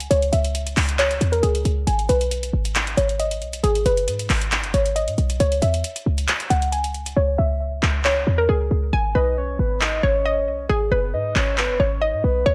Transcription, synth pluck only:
0.11 0.31 C#5 medium
0.33 0.95 E5 medium
0.99 1.31 C#5 medium
1.32 1.42 A#4 medium
1.43 1.84 G#4 medium
1.87 2.07 G#5 medium
2.09 2.71 B4 medium
2.97 3.17 C#5 medium
3.20 3.61 D#5 medium
3.63 3.84 G#4 loud
3.86 4.48 B4 medium
4.74 4.94 C#5 medium
4.96 5.37 D#5 medium
5.40 5.60 C#5 loud
5.62 6.24 E5 medium
6.50 6.70 F#5 medium
6.72 7.14 G#5 medium
7.17 7.37 C#5 medium
7.38 8.01 E5 medium
8.05 8.37 C#5 medium
8.38 8.48 A#4 medium
8.49 8.90 G#4 medium
8.93 9.13 G#5 medium
9.15 9.77 B4 medium
10.03 10.23 C#5 medium
10.26 10.67 D#5 medium
10.69 10.90 G#4 loud
10.92 11.54 B4 medium
11.80 12.00 C#5 medium
12.02 12.43 D#5 medium
12.46 12.55 C#5 loud

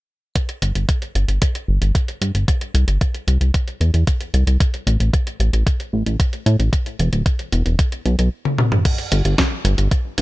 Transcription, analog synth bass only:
0.62 0.72 G1 medium
0.75 0.86 G1 medium
1.15 1.26 G1 medium
1.28 1.39 G1 medium
1.68 1.79 G1 medium
1.82 1.92 G1 medium
2.21 2.32 G2 medium
2.35 2.45 G1 medium
2.74 2.85 C2 medium
2.88 2.98 G1 medium
3.27 3.38 C2 medium
3.41 3.51 C2 medium
3.81 3.91 E2 medium
3.94 4.04 E2 medium
4.34 4.44 C2 medium
4.47 4.57 C2 medium
4.87 4.97 A1 medium
5.00 5.10 A1 medium
5.40 5.50 A1 medium
5.53 5.64 A1 medium
5.93 6.03 A1 medium
6.06 6.17 A1 medium
6.46 6.56 A2 medium
6.59 6.70 A1 medium
6.99 7.10 E1 medium
7.13 7.23 D1 medium
7.52 7.63 E1 medium
7.66 7.76 E1 medium
8.05 8.16 B1 medium
8.19 8.29 B1 medium
9.12 9.22 G1 medium
9.25 9.35 G1 medium
9.65 9.75 G1 medium
9.78 9.88 G1 medium
10.18 10.22 G1 medium

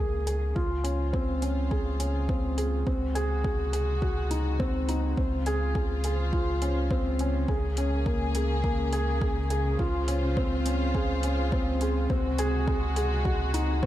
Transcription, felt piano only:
0.00 0.58 A#3 medium
0.00 0.58 C#4 medium
0.00 0.27 G#4 medium
0.27 0.54 G#4 medium
0.55 0.83 F4 medium
0.84 1.12 C#4 medium
1.13 1.41 C4 medium
1.42 1.70 C#4 medium
1.71 1.88 G#4 medium
2.00 2.27 C#4 medium
2.29 2.56 C4 medium
2.57 2.85 G#4 medium
2.87 3.14 C4 medium
3.15 3.43 G#4 medium
3.44 3.61 G#4 medium
3.73 4.01 G#4 medium
4.02 4.29 F#4 medium
4.31 4.58 D#4 medium
4.60 4.87 C4 medium
4.89 5.16 D#4 medium
5.17 5.45 C4 medium
5.46 5.74 G#4 medium
5.76 5.92 G#4 medium
6.05 6.32 G#4 medium
6.33 6.60 F4 medium
6.62 6.89 C#4 medium
6.91 7.18 C4 medium
7.20 7.47 C#4 medium
7.49 7.65 G#4 medium
7.78 8.05 C#4 medium
8.06 8.34 A#3 medium
8.35 8.63 G#4 medium
8.64 8.91 A#3 medium
8.93 9.20 G#4 medium
9.21 9.38 G#4 medium
9.50 9.78 G#4 medium
9.80 10.07 F4 medium
10.08 10.35 C#4 medium
10.37 10.64 C4 medium
10.66 10.93 C#4 medium
10.95 11.11 G#4 medium
11.24 11.51 C#4 medium
11.53 11.80 C4 medium
11.81 12.09 G#4 medium
12.10 12.37 C4 medium
12.39 12.66 G#4 loud
12.68 12.84 G#4 medium
12.96 13.24 G#4 medium
13.25 13.52 F#4 medium
13.54 13.81 D#4 medium
13.83 13.86 C4 medium

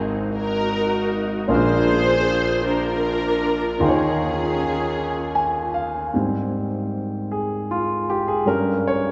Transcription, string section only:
0.00 0.30 C4 medium
0.00 0.30 D#4 medium
0.34 1.46 D#4 medium
0.34 1.46 F#4 medium
0.34 1.17 A#4 medium
1.50 2.62 F4 medium
1.50 2.62 G#4 medium
1.50 2.62 C5 loud
2.67 3.79 D4 medium
2.67 3.79 F4 medium
2.67 3.83 A#4 medium
3.83 5.72 C#4 medium
3.83 5.72 F4 medium
3.83 5.76 G#4 medium

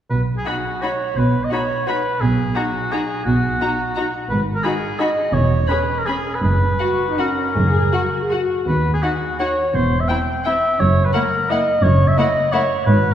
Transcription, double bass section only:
0.10 0.38 B1 soft
1.17 1.44 B1 soft
2.22 2.48 B1 medium
3.26 3.53 B1 medium
4.30 4.57 G#1 medium
5.34 5.62 E1 medium
6.43 6.72 F#1 soft
7.56 7.85 F#1 soft
8.68 8.96 D#2 soft
9.75 10.02 E1 soft
10.79 11.06 F#1 soft
11.84 12.10 F#1 medium
12.87 13.14 G#1 medium

